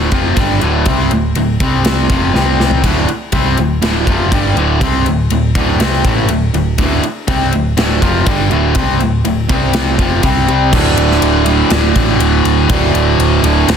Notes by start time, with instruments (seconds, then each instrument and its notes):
Already playing: picked electric bass D1, overdriven electric guitar D2 A2 D3
0.11 picked electric bass F1, overdriven electric guitar F2 C3 F3, kick, ride
0.36 picked electric bass G1, overdriven electric guitar G2 D3 G3, kick, ride
0.61 picked electric bass D1, overdriven electric guitar D2 A2 D3, ride
0.86 picked electric bass C2, overdriven electric guitar C3 G3 C4, kick, ride
1.11 picked electric bass D1, overdriven electric guitar D2 A2, ride
1.35 picked electric bass D1, overdriven electric guitar D2 A2, ride
1.60 picked electric bass C2, overdriven electric guitar C3 G3 C4, kick, ride
1.85 snare, ride
2.10 picked electric bass F1, overdriven electric guitar F2 C3 F3, kick, ride
2.34 picked electric bass C2, overdriven electric guitar C3 G3 C4, snare
2.59 picked electric bass C2, overdriven electric guitar C3 G3 C4, snare
2.71 floor tom
2.83 picked electric bass D1, overdriven electric guitar D2 A2 D3, kick, ride, splash
3.08 muted picked electric bass stroke, muted overdriven electric guitar stroke, ride
3.32 picked electric bass C2, overdriven electric guitar C3 G3 C4, kick, ride
3.57 picked electric bass D1, overdriven electric guitar D2 A2, ride
3.81 picked electric bass D1, overdriven electric guitar D2 A2 D3, snare, ride
4.07 picked electric bass F1, overdriven electric guitar F2 C3 F3, kick, ride
4.32 picked electric bass G1, overdriven electric guitar G2 D3 G3, kick, ride
4.55 picked electric bass D1, overdriven electric guitar D2 A2 D3, ride
4.81 picked electric bass C2, overdriven electric guitar C3 G3 C4, kick, ride
5.04 picked electric bass D1, overdriven electric guitar D2 A2, ride
5.30 picked electric bass D1, overdriven electric guitar D2 A2, ride
5.55 picked electric bass D1, overdriven electric guitar D2 A2 D3, kick, ride
5.79 picked electric bass C2, overdriven electric guitar C3 G3 C4, snare, ride
5.93 snare
6.04 picked electric bass A1, overdriven electric guitar A2 E3 A3, kick, ride
6.28 picked electric bass D1, overdriven electric guitar D2 A2, ride
6.53 picked electric bass D1, overdriven electric guitar D2 A2, ride
6.78 picked electric bass D1, overdriven electric guitar D2 A2 D3, kick, ride
7.03 muted overdriven electric guitar stroke, muted picked electric bass stroke, ride
7.27 picked electric bass C2, overdriven electric guitar C3 G3 C4, kick, ride
7.52 picked electric bass D1, overdriven electric guitar D2 A2, ride
7.77 picked electric bass D1, overdriven electric guitar D2 A2 D3, snare, ride
8.01 picked electric bass F1, overdriven electric guitar F2 C3 F3, kick, ride
8.26 picked electric bass G1, overdriven electric guitar G2 D3 G3, kick, ride
8.51 picked electric bass D1, overdriven electric guitar D2 A2 D3, ride
8.75 picked electric bass C2, overdriven electric guitar C3 G3 C4, kick, ride
9.00 picked electric bass D1, overdriven electric guitar D2 A2, ride
9.25 picked electric bass D1, overdriven electric guitar D2 A2, ride
9.49 picked electric bass C2, overdriven electric guitar C3 G3 C4, kick, ride
9.73 snare, ride
9.99 picked electric bass F1, overdriven electric guitar F2 C3 F3, kick, ride
10.23 picked electric bass C2, overdriven electric guitar C3 G3 C4, kick, ride
10.48 picked electric bass C2, overdriven electric guitar C3 G3 C4, ride
10.71 picked electric bass D1, overdriven electric guitar D2 A2 D3, kick, crash
10.97 picked electric bass D1, ride
11.12 snare
11.21 picked electric bass D1, ride
11.45 overdriven electric guitar D2 A2 D3, ride
11.70 picked electric bass D1, overdriven electric guitar D2 A2 D3, snare, ride
11.96 picked electric bass A1, kick, ride
12.19 picked electric bass D1, ride
12.45 picked electric bass D1, ride
12.69 picked electric bass D1, overdriven electric guitar D2 A2 D3, kick, ride
12.94 picked electric bass D1, ride
13.18 picked electric bass D1, ride
13.43 picked electric bass D1, overdriven electric guitar D2 A2 D3, ride
13.67 picked electric bass D1, overdriven electric guitar D2 A2 D3, snare, ride